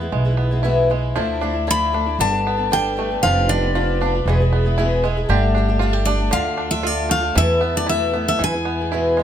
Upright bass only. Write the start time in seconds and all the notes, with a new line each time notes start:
0.12 B1
1.16 D2
2.19 G1
3.24 F1
4.26 E1
5.29 G1
6.33 D2
7.36 E2
8.40 E2